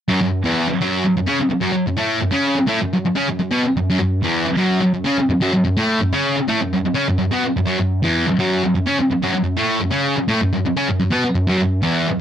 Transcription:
0.08 0.19 F#2 loud
0.08 0.20 F#3 loud
0.22 0.40 F#2 medium
0.44 0.67 E2 medium
0.44 0.67 E3 loud
0.69 muted distorted electric guitar stroke medium
0.81 1.03 F#2 medium
0.81 1.03 F#3 loud
1.05 muted distorted electric guitar stroke medium
1.17 1.27 F#2 medium
1.26 1.37 C#3 medium
1.26 1.38 C#4 loud
1.39 muted distorted electric guitar stroke medium
1.50 muted distorted electric guitar stroke medium
1.61 1.72 F#2 loud
1.61 1.73 F#3 medium
1.73 muted distorted electric guitar stroke medium
1.87 1.98 F#2 medium
1.97 2.20 A2 loud
1.97 2.20 A3 loud
2.21 2.32 F#2 medium
2.31 2.55 C#3 medium
2.31 2.55 C#4 medium
2.55 muted distorted electric guitar stroke medium
2.67 2.78 A2 medium
2.67 2.79 A3 loud
2.81 2.92 F#2 medium
2.93 3.04 F#2 medium
3.05 muted distorted electric guitar stroke medium
3.15 3.26 C#3 medium
3.15 3.27 C#4 medium
3.28 3.38 F#2 medium
3.39 3.51 F#2 medium
3.51 3.62 B2 loud
3.51 3.62 B3 medium
3.63 muted distorted electric guitar stroke medium
3.77 3.87 F#2 medium
3.90 3.98 F#2 loud
3.90 3.99 F#3 loud
4.00 4.18 F#2 medium
4.23 4.45 E2 medium
4.23 4.46 E3 loud
4.47 muted distorted electric guitar stroke medium
4.57 4.80 F#2 loud
4.57 4.81 F#3 loud
4.82 muted distorted electric guitar stroke medium
4.94 5.05 F#2 medium
5.05 5.16 C#3 medium
5.05 5.16 C#4 medium
5.18 muted distorted electric guitar stroke medium
5.30 muted distorted electric guitar stroke medium
5.41 5.52 F#2 medium
5.41 5.52 F#3 loud
5.54 muted distorted electric guitar stroke medium
5.65 5.76 F#2 medium
5.77 5.99 A2 medium
5.77 6.00 A3 loud
6.00 6.11 F#2 medium
6.12 6.35 C#3 loud
6.12 6.36 C#4 loud
6.36 muted distorted electric guitar stroke medium
6.48 6.59 A2 medium
6.48 6.59 A3 loud
6.61 6.72 F#2 medium
6.73 6.84 F#2 medium
6.85 muted distorted electric guitar stroke medium
6.94 7.06 C#3 medium
6.94 7.06 C#4 medium
7.08 7.17 F#2 medium
7.18 7.30 F#2 medium
7.32 7.42 B2 medium
7.32 7.43 B3 medium
7.43 muted distorted electric guitar stroke medium
7.57 7.65 F#2 medium
7.66 7.77 F#2 medium
7.66 7.78 F#3 loud
7.79 7.97 F#2 medium
8.03 8.25 E2 medium
8.03 8.26 E3 medium
8.27 muted distorted electric guitar stroke medium
8.39 8.61 F#2 loud
8.39 8.62 F#3 loud
8.64 muted distorted electric guitar stroke medium
8.75 8.86 F#2 medium
8.86 8.97 C#3 medium
8.86 8.97 C#4 medium
9.00 muted distorted electric guitar stroke medium
9.11 muted distorted electric guitar stroke medium
9.23 9.33 F#2 medium
9.23 9.33 F#3 loud
9.34 muted distorted electric guitar stroke medium
9.44 9.56 F#2 medium
9.57 9.80 A2 loud
9.57 9.80 A3 loud
9.80 9.92 F#2 medium
9.91 10.15 C#3 medium
9.91 10.15 C#4 medium
10.16 muted distorted electric guitar stroke medium
10.28 10.39 A2 medium
10.28 10.40 A3 loud
10.41 10.52 F#2 medium
10.53 10.65 F#2 medium
10.66 muted distorted electric guitar stroke medium
10.76 10.88 C#3 medium
10.76 10.88 C#4 loud
10.88 10.98 F#2 medium
11.00 11.12 F#2 medium
11.11 11.23 B2 medium
11.11 11.23 B3 loud
11.24 muted distorted electric guitar stroke medium
11.35 11.46 F#2 medium
11.47 11.57 F#2 loud
11.47 11.60 F#3 loud
11.58 11.78 F#2 medium
11.82 12.06 E2 medium
11.82 12.07 E3 loud
12.08 muted distorted electric guitar stroke medium

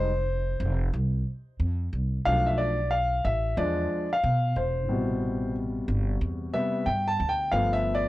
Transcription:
0.00 0.57 F1 loud
0.00 0.78 C5 loud
0.60 0.88 F1 loud
0.93 1.21 C2 loud
1.60 1.87 F2 medium
1.93 2.20 C2 loud
2.25 3.21 B1 loud
2.25 2.73 F3 medium
2.25 2.73 A3 soft
2.25 2.73 D4 medium
2.25 2.47 F5 loud
2.46 2.58 E5 medium
2.58 2.92 D5 loud
2.91 3.25 F5 loud
3.25 3.52 A1 loud
3.25 3.55 E5 loud
3.57 3.85 E2 loud
3.57 4.05 F3 medium
3.57 4.05 G#3 medium
3.57 4.05 D4 medium
3.57 4.14 D5 medium
4.13 4.58 F5 loud
4.24 4.51 B2 loud
4.56 4.88 E1 medium
4.56 5.51 C5 medium
4.88 5.84 A1 loud
4.88 7.49 B2 medium
4.88 6.52 C3 medium
4.88 6.52 G3 medium
5.88 6.16 G1 loud
6.21 6.49 E2 medium
6.53 6.83 C3 medium
6.53 6.83 G3 soft
6.53 6.84 B3 medium
6.53 6.88 E5 loud
6.86 7.14 G2 medium
6.86 7.09 G5 loud
7.08 7.31 A5 loud
7.20 7.48 D2 medium
7.29 7.53 G5 loud
7.52 8.09 G1 loud
7.52 8.09 F3 medium
7.52 8.09 A3 soft
7.52 8.09 B3 medium
7.52 7.73 F5 loud
7.73 7.97 E5 loud
7.95 8.09 D5 loud

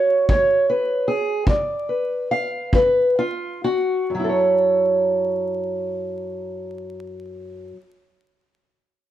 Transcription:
0.00 1.43 F#4 soft
0.00 0.28 C#5 loud
0.00 1.07 E5 soft
0.29 0.99 F#3 medium
0.29 0.68 C#5 medium
0.29 kick medium
0.69 1.08 B4 medium
1.08 1.47 G#4 loud
1.47 2.21 C#3 medium
1.47 2.30 D5 medium
1.47 kick medium
1.89 2.73 B4 soft
2.31 2.73 F5 loud
2.73 3.54 C#4 medium
2.73 3.18 B4 loud
2.73 kick medium
3.19 3.63 F4 loud
3.64 4.10 F#4 loud
4.10 7.72 F#2 medium
4.15 7.77 F#3 medium
4.19 7.81 E4 medium
4.24 7.86 A4 medium
4.29 7.91 C#5 medium

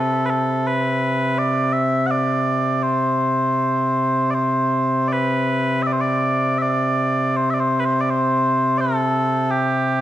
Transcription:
0.00 10.01 C3 medium
0.00 10.01 C4 medium
0.00 0.26 A4 medium
0.26 0.30 B4 medium
0.30 0.67 A4 medium
0.67 1.38 B4 medium
1.38 1.73 D5 medium
1.73 2.07 E5 medium
2.07 2.11 F#5 medium
2.11 2.83 D5 medium
2.83 4.30 C5 medium
4.30 5.08 C5 medium
4.30 4.34 D5 medium
5.08 5.12 D5 medium
5.12 5.83 B4 medium
5.83 5.87 E5 medium
5.87 5.92 D5 medium
5.92 6.01 C5 medium
6.01 6.58 D5 medium
6.58 7.36 D5 medium
6.58 6.62 E5 medium
7.36 7.50 C5 medium
7.50 7.60 D5 soft
7.50 7.54 E5 soft
7.60 7.80 C5 medium
7.80 7.85 B4 soft
7.85 8.01 C5 medium
8.01 8.10 D5 medium
8.10 8.78 C5 medium
8.78 9.51 A4 medium
8.78 8.81 D5 medium
9.51 10.01 G4 medium

